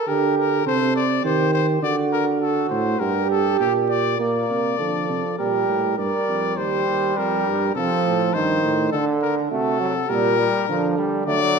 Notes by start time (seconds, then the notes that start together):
0.08 D3 G4 A#4
0.38 A#4
0.66 C3 A4 C5
0.96 D5
1.23 D#3 G4 C5
1.54 C5
1.82 D3 F#4 D5
2.12 A#4
2.41 F#4 A4
2.69 A2 C5
3.00 G2 G4 A#4
3.30 A4
3.60 A#2 G4
3.90 D5
4.18 A#2 A#3 A#4 D5
4.49 C3
4.78 D3 F3 A4
5.09 C3
5.38 A#2 G3 G4 A#4
5.68 A2
5.97 G2 G3 A#4 D5
6.28 F2
6.57 D#2 G3 G4 C5
6.87 D#2
7.16 F2 G4 A#4
7.46 G2
7.75 C3 F3 C4 A4
8.05 A2
8.34 G2 D#3 D#4 C5
8.64 A2
8.92 D3 D4 A4
9.22 A#4
9.50 C3 A3 F#4 A4
9.81 F#3
10.09 A#2 G3 G4 A#4
10.39 G3
10.68 D3 F3 D4
10.98 G3
11.26 D3 F#3 A3 D5